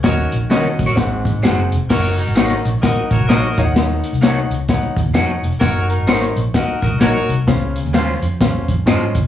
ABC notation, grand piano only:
X:1
M:4/4
L:1/8
Q:"Swing" 1/4=129
K:Gblyd
V:1 name="Grand piano"
[DGe] z [DGe] z [CAg] z [CAg] z | [EBg] z [EBg] z [EBg] z [EBe] [Edfg]- | [Edfg] z [Edg] z [Edg] z [Edg] z | [EBg] z [EBc] z [EBg] z [EBg] z |
[Dcf] z [Dcf] z [Dcf] z [Dce] z |]
V:2 name="Grand piano" clef=bass
E,3 z A,,3 z | z6 z E,- | E,2 z6 | z8 |
D,3 z4 z |]